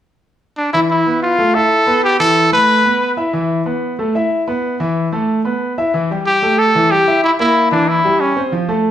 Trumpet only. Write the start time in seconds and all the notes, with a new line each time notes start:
0.58 D4
0.73 E4
0.90 E4
1.23 F4
1.55 A4
2.04 G4
2.20 A4
2.53 B4
6.27 G4
6.59 A4
6.91 G4
7.24 E4
7.40 E4
7.72 D4
7.88 E4
8.21 C#4